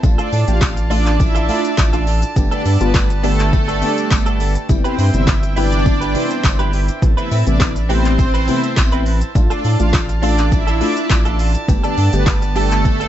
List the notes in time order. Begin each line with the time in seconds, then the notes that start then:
0.03 A1 A3 D4 F4 A4 D5 A5, muted clean electric guitar stroke, kick, tambourine, shaker
0.18 D4 F4 A4 D5, closed hi-hat, shaker
0.32 A2 D4 F4 A4, open hi-hat, tambourine, shaker
0.48 A1 A3 D4 F4 G4 F5, muted clean electric guitar stroke, closed hi-hat, shaker
0.61 muted clean electric guitar stroke, kick, snare, clap, tambourine, shaker
0.77 muted clean electric guitar stroke, closed hi-hat, shaker
0.90 A3 D4 F4 A4 D5, open hi-hat, tambourine, shaker
1.06 D4 F4 A4, clap, closed hi-hat, shaker
1.19 E4 E5, muted clean electric guitar stroke, kick, tambourine, shaker
1.35 D4 F4 A4, closed hi-hat, shaker
1.48 A3 D4 F4 A4 D5, open hi-hat, tambourine, shaker
1.64 muted clean electric guitar stroke, closed hi-hat, shaker
1.77 A1, muted clean electric guitar stroke, kick, snare, clap, tambourine, shaker
1.93 D4 F4 A4, closed hi-hat, shaker
2.07 D4 F4 A4, open hi-hat, tambourine, shaker
2.22 muted clean electric guitar stroke, closed hi-hat, shaker
2.36 G1 D3 G3 A3 B3 G4 B4 D5, muted clean electric guitar stroke, kick, tambourine, shaker
2.51 B3 D4 A4 D5, closed hi-hat, shaker
2.65 G2 B3 D4 A4, open hi-hat, tambourine, shaker
2.81 G1 D3 G3 A3 B3 F4 B4, muted clean electric guitar stroke, closed hi-hat, shaker
2.94 muted clean electric guitar stroke, kick, snare, clap, tambourine, shaker
3.10 muted clean electric guitar stroke, closed hi-hat, shaker
3.23 D3 G3 A3 B3 D4 G4 A4, open hi-hat, tambourine, shaker
3.39 B3 D4 A4, clap, closed hi-hat, shaker
3.53 A3 A4, muted clean electric guitar stroke, kick, tambourine, shaker
3.68 B3 D4 A4, closed hi-hat, shaker
3.82 D3 G3 A3 B3 D4 G4 A4 D5, open hi-hat, tambourine, shaker
3.97 muted clean electric guitar stroke, closed hi-hat, shaker
4.11 G1, muted clean electric guitar stroke, kick, snare, clap, tambourine, shaker
4.26 B3 D4 A4, closed hi-hat, shaker
4.40 B3 D4 A4, open hi-hat, tambourine, shaker
4.55 muted clean electric guitar stroke, closed hi-hat, shaker
4.69 G1 C3 E3 G3 B3 E4 E5 G5, muted clean electric guitar stroke, kick, tambourine, shaker
4.84 C4 E4 G4 B4 C5, closed hi-hat, shaker
4.98 G2 E4 G4 B4, open hi-hat, tambourine, shaker
5.14 G1 C3 E3 G3 B3 E4 E5, muted clean electric guitar stroke, closed hi-hat, shaker
5.27 muted clean electric guitar stroke, kick, snare, clap, tambourine, shaker
5.43 muted clean electric guitar stroke, closed hi-hat, shaker
5.56 C3 E3 G3 B3 D4 E4 G4 B4 D5, open hi-hat, tambourine, shaker
5.72 E4 G4 B4, closed hi-hat, shaker
5.86 muted clean electric guitar stroke, kick, tambourine, shaker
6.01 E4 G4 B4, closed hi-hat, shaker
6.14 C3 E3 G3 B3 C4 E4 G4 B4 C5, open hi-hat, tambourine, shaker
6.30 muted clean electric guitar stroke, closed hi-hat, shaker
6.44 G1, muted clean electric guitar stroke, kick, snare, clap, tambourine, shaker
6.59 E4 G4 B4, closed hi-hat, shaker
6.73 E4 G4 B4, open hi-hat, shaker
6.88 muted clean electric guitar stroke, closed hi-hat, shaker
7.02 A1 C3 E3 A3 B3 E4 A5, muted clean electric guitar stroke, kick, shaker
7.17 C4 E4 B4 E5, closed hi-hat, shaker
7.31 A2 C4 E4 B4, open hi-hat, tambourine, shaker
7.47 A1 C3 E3 A3 B3 D4 E4 D5, muted clean electric guitar stroke, closed hi-hat, shaker
7.60 muted clean electric guitar stroke, kick, snare, clap, tambourine, shaker
7.76 muted clean electric guitar stroke, closed hi-hat, shaker
7.89 C3 E3 A3 B3 C4 E4 G4 B4 C5, open hi-hat, tambourine, shaker
8.05 C4 E4 B4, clap, closed hi-hat, shaker
8.19 C4 C5, muted clean electric guitar stroke, kick, tambourine, shaker
8.34 C4 E4 B4, closed hi-hat, shaker
8.48 C3 E3 A3 B3 C4 E4 B4 E5, open hi-hat, tambourine, shaker
8.63 muted clean electric guitar stroke, closed hi-hat, shaker
8.76 A1, muted clean electric guitar stroke, kick, snare, clap, tambourine, shaker
8.92 C4 E4 B4, closed hi-hat, shaker
9.06 C4 E4 B4, open hi-hat, shaker
9.21 muted clean electric guitar stroke, closed hi-hat, shaker
9.35 A1 A3 D4 F4 A4 D5 A5, muted clean electric guitar stroke, kick, tambourine, shaker
9.50 D4 F4 A4 D5, closed hi-hat, shaker
9.64 A2 D4 F4 A4, open hi-hat, tambourine, shaker
9.80 A1 A3 D4 F4 F5, muted clean electric guitar stroke, closed hi-hat, shaker
9.93 muted clean electric guitar stroke, kick, snare, clap, tambourine, shaker
10.09 muted clean electric guitar stroke, closed hi-hat, shaker
10.22 A3 D4 F4 A4 D5, open hi-hat, tambourine, shaker
10.38 D4 F4 A4, clap, closed hi-hat, shaker
10.52 E4 E5, muted clean electric guitar stroke, kick, tambourine, shaker
10.67 D4 F4 A4, closed hi-hat, shaker
10.81 A3 D4 F4 A4 D5, open hi-hat, tambourine, shaker
10.96 muted clean electric guitar stroke, closed hi-hat, shaker
11.10 A1, muted clean electric guitar stroke, kick, snare, clap, tambourine, shaker
11.25 D4 F4 A4, closed hi-hat, shaker
11.39 D4 F4 A4, open hi-hat, shaker
11.54 muted clean electric guitar stroke, closed hi-hat, shaker
11.68 G1 D3 G3 A3 B3 G4 B4, muted clean electric guitar stroke, kick, tambourine, shaker
11.84 B3 D4 A4 D5, closed hi-hat, shaker
11.97 G2 B3 D4 A4, open hi-hat, tambourine, shaker
12.13 G1 D3 G3 A3 B3 G4 B4, closed hi-hat, shaker
12.26 muted clean electric guitar stroke, kick, snare, clap, tambourine, shaker
12.42 muted clean electric guitar stroke, closed hi-hat, shaker
12.56 D3 G3 A3 B3 D4 G4 A4, open hi-hat, tambourine, shaker
12.71 B3 D4 A4, clap, closed hi-hat, shaker
12.85 A3 A4, muted clean electric guitar stroke, kick, tambourine, shaker
13.00 B3 D4 A4, closed hi-hat, shaker